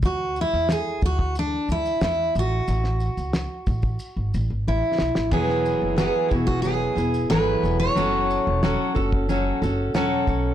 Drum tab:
CC |----------------|----------------|x---------------|----------------|
SH |x-x-x-x-x-xxx-x-|x-xxx-xxx-x-----|--x-x-xxx-xxx-x-|x-x-x-x-x-x-x-x-|
SD |----o-------o---|-o--o---------oo|-o--o-------o---|----o-------o---|
BD |o-----oo--------|------oo--------|o-----oo--------|------oo------o-|